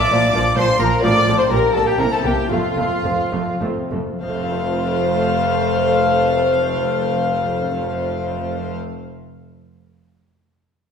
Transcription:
Already playing: violin section D5 D6, violin D5
0.11 double bass section A#1, cello section A#2, lute A#2 D4 F4, viola section F3
0.33 double bass section A#1, cello section A#2, lute A#2, viola section F3
0.56 double bass section A#1, cello section A#2, lute A#2 D4 F4, viola section F3, violin C5, violin section C5 C6
0.79 double bass section A#1, cello section A#2, lute A#2, viola section F3, violin section A#4 A#5, violin A#4
1.02 double bass section A1, lute A2 C4 F4, cello section A2, viola section F3, violin section D5 D6, violin D5
1.26 double bass section A1, cello section A2, lute A2, viola section F3
1.37 violin section C5 C6, violin C5
1.50 double bass section A#1, cello section A#2, lute A#2 A#3 D4 G4, viola section G3, violin section A#4 A#5, violin A#4
1.74 double bass section A#1, cello section A#2, lute A#2, viola section G3, violin section A4 A5, violin A4
1.86 violin section G4 G5, violin G4
1.98 double bass section C2, cello section C3, lute C3 A#3 C4 E4, viola section A#3, violin section A#4 A#5, violin A#4
2.11 violin section A4 A5, violin A4
2.24 double bass section C2, cello section C3, lute C3, viola section A#3, violin section G4 G5, violin G4
2.50 double bass section F1, cello section F2, lute F2, viola section A3, violin section F4 F5, violin F4
2.76 double bass section F1, cello section F2, lute F2, viola section A3
3.03 double bass section F1, cello section F2, lute F2 A3 C4 F4, viola section A3
3.32 double bass section F1, lute F2, cello section F2, viola section A3
3.61 double bass section F1, lute F2 A3 C4 F4, cello section F2, viola section A3
3.91 double bass section F1, lute F2, cello section F2, viola section A3
4.21 double bass section F1, cello section F2, lute F3, viola section A3, violin section C5 F5, violin F5
4.30 lute A3
4.37 lute C4
4.44 lute F4
4.51 lute C5

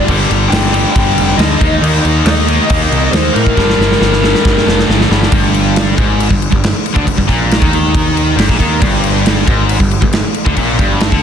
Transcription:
Already playing: distorted electric guitar G3 A#3
0.07 picked electric bass G1, distorted electric guitar G2 D3 G3, kick, crash
0.30 picked electric bass G1, crash
0.49 picked electric bass G1, distorted electric guitar G2 D3 G3, lead electric guitar G5, snare, crash
0.72 distorted electric guitar G2 D3 G3, crash
0.76 distorted electric guitar G2
0.92 distorted electric guitar G2 D3 G3, lead electric guitar G5, kick, crash
0.96 picked electric bass G1
1.17 picked electric bass F1, crash
1.37 picked electric bass D2, distorted electric guitar G2 D3 G3, lead electric guitar D#5, snare, crash
1.59 picked electric bass D#2, distorted electric guitar D#3 A#3 D#4, kick, crash
1.81 picked electric bass D#2, distorted electric guitar D#3 A#3 D#4, crash
2.05 picked electric bass D#2, crash
2.25 picked electric bass D#2, distorted electric guitar D#3 A#3 D#4, lead electric guitar D#5, snare, crash
2.47 distorted electric guitar D#3 A#3 D#4, crash
2.69 picked electric bass D#2, distorted electric guitar D#3 A#3 D#4, lead electric guitar D#5, kick, crash
2.91 picked electric bass C2, crash
3.12 picked electric bass D#2, distorted electric guitar D#3 A#3 D#4, lead electric guitar C5, snare, crash
3.33 picked electric bass A2, distorted electric guitar D#3 A#3 D#4, lead electric guitar A#4, snare, crash
3.46 kick
3.56 picked electric bass G1, distorted electric guitar G2 D3 G3, kick, snare
3.70 snare
3.79 picked electric bass G1, snare
3.92 snare
3.99 picked electric bass G1, distorted electric guitar G2 D3 G3, snare
4.13 snare
4.21 distorted electric guitar G2 D3 G3, snare
4.35 snare
4.43 picked electric bass G1, distorted electric guitar G2 D3 G3, kick, snare
4.58 snare
4.67 picked electric bass F1, snare
4.79 snare
4.87 picked electric bass G1, distorted electric guitar G2 D3 G3, snare
5.01 snare
5.10 picked electric bass G1, distorted electric guitar G2 D3 G3, snare
5.23 snare
5.32 picked electric bass G1, distorted electric guitar G2, kick, crash
5.54 crash
5.76 snare, crash
5.96 picked electric bass G#1, distorted electric guitar G#2, kick, crash
6.20 crash
6.29 picked electric bass G1, distorted electric guitar G2, kick
6.42 crash
6.50 picked electric bass G1, distorted electric guitar G2, kick
6.64 snare, crash
6.86 crash
6.94 picked electric bass D2, distorted electric guitar D3, kick
7.05 picked electric bass G1, distorted electric guitar G2, kick, crash
7.16 picked electric bass G1, distorted electric guitar G2, kick
7.27 picked electric bass A#1, distorted electric guitar A#2, kick, crash
7.51 snare, crash
7.59 picked electric bass D#2, distorted electric guitar D#3, kick
7.73 crash
7.95 kick, crash
8.17 crash
8.36 picked electric bass G1, distorted electric guitar G2, snare, crash
8.48 picked electric bass A#1, distorted electric guitar A#2, kick
8.58 picked electric bass D#2, distorted electric guitar D#3, kick, crash
8.80 picked electric bass G1, distorted electric guitar G2, kick, crash
9.04 crash
9.26 snare, crash
9.46 picked electric bass G#1, distorted electric guitar G#2, kick, crash
9.69 crash
9.80 picked electric bass G1, distorted electric guitar G2, kick
9.91 crash
10.02 picked electric bass G1, distorted electric guitar G2, kick
10.13 snare, crash
10.34 crash
10.46 picked electric bass D2, distorted electric guitar D3, kick
10.56 picked electric bass A#1, distorted electric guitar A#2, kick, crash
10.78 picked electric bass G1, distorted electric guitar G2, kick, crash
11.00 snare, crash
11.12 picked electric bass D2, distorted electric guitar D3, kick

